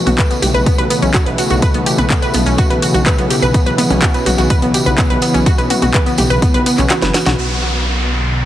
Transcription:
Already playing: B2 C#3 E3 A3
0.07 B1 F#4, closed hi-hat, mid tom, tambourine
0.18 B4, kick, clap, closed hi-hat, tambourine
0.30 B3, closed hi-hat, tambourine
0.42 B1 G4, open hi-hat, mid tom, tambourine
0.54 B1 B4, closed hi-hat, tambourine
0.66 B3, kick, closed hi-hat, tambourine
0.78 B1 B4, closed hi-hat
0.90 B3, open hi-hat, tambourine
1.02 B1 C#4, closed hi-hat, tambourine
1.14 F#4, kick, clap, closed hi-hat, tambourine
1.26 B1 B4, closed hi-hat
1.38 F#4, open hi-hat, tambourine
1.50 B1 F#4, closed hi-hat, tambourine
1.62 B4, kick, closed hi-hat, tambourine
1.74 B1 B3, closed hi-hat
1.86 G4, open hi-hat, tambourine
1.98 B1 B4, closed hi-hat, mid tom
2.10 B3, kick, clap, closed hi-hat, tambourine
2.22 B4, closed hi-hat, tambourine
2.34 B1 B3, open hi-hat, mid tom, tambourine
2.46 B1 C#4, closed hi-hat, tambourine
2.58 F#4, kick, closed hi-hat, tambourine
2.70 B1 B4, closed hi-hat
2.82 F#4, open hi-hat, tambourine
2.94 B1 F#4, closed hi-hat, tambourine
3.06 B4, kick, clap, closed hi-hat, tambourine
3.18 B1 B3, closed hi-hat
3.30 G4, open hi-hat, tambourine
3.42 B1 B4, closed hi-hat, tambourine
3.54 B3, kick, closed hi-hat, tambourine
3.66 B1 B4, closed hi-hat
3.78 B3, open hi-hat, mid tom, tambourine
3.90 B1 C#4, closed hi-hat, mid tom, tambourine
4.02 F#4, kick, clap, closed hi-hat, tambourine
4.14 B4, closed hi-hat, tambourine
4.26 B1 F#4, open hi-hat, mid tom, tambourine
4.38 B1 F#4, closed hi-hat, tambourine
4.50 B4, kick, closed hi-hat, tambourine
4.62 B1 B3, closed hi-hat
4.74 G4, open hi-hat, tambourine
4.86 B1 B4, closed hi-hat, tambourine
4.98 B3, kick, clap, closed hi-hat, tambourine
5.10 B1 B4, closed hi-hat
5.22 B3, open hi-hat, tambourine
5.34 B1 C#4, closed hi-hat, tambourine
5.46 F#4, kick, closed hi-hat, tambourine
5.58 B1 B4, closed hi-hat, tambourine
5.70 F#4, open hi-hat, mid tom, tambourine
5.82 B1 F#4, closed hi-hat, mid tom, tambourine
5.94 B4, kick, clap, closed hi-hat, tambourine
6.06 B3, closed hi-hat, tambourine
6.18 B1 G4, open hi-hat, mid tom, tambourine
6.30 B1 B4, closed hi-hat
6.42 B3, kick, closed hi-hat, tambourine
6.54 B1 B4, closed hi-hat
6.66 B3, open hi-hat, tambourine
6.78 B1 C#4, clap, closed hi-hat, tambourine
6.90 F#4, snare, clap, closed hi-hat, tambourine
7.02 F#1 B4, snare, closed hi-hat
7.14 F#4, snare, open hi-hat, tambourine
7.26 B1 F#4, snare, closed hi-hat
7.38 B1 B2 D3 F#3 B3, downlifter

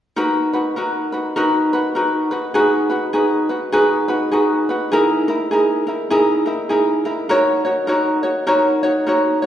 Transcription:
0.16 D#4 F#4 A#4 B4
0.53 D#4 F#4 B4
0.76 D#4 F#4 A#4 B4
1.12 D#4 F#4 B4
1.36 D#4 F#4 A#4 B4
1.73 D#4 F#4 B4
1.95 D#4 F#4 A#4 B4
2.31 D#4 F#4 B4
2.54 D#4 F#4 G#4 B4
2.90 D#4 F#4 B4
3.13 D#4 F#4 G#4 B4
3.49 D#4 F#4 B4
3.72 D#4 F#4 G#4 B4
4.08 D#4 F#4 B4
4.32 D#4 F#4 G#4 B4
4.69 D#4 F#4 B4
4.92 D#4 E4 G#4 A#4
5.28 D#4 E4 A#4
5.51 D#4 E4 G#4 A#4
5.87 D#4 E4 A#4
6.10 D#4 E4 G#4 A#4
6.46 D#4 E4 A#4
6.69 D#4 E4 G#4 A#4
7.05 D#4 E4 A#4
7.29 D#4 F#4 A#4 C#5
7.65 D#4 F#4 C#5
7.87 D#4 F#4 A#4 C#5
8.23 D#4 F#4 C#5
8.47 D#4 F#4 A#4 C#5
8.83 D#4 F#4 C#5
9.07 D#4 F#4 A#4 C#5
9.42 C#5

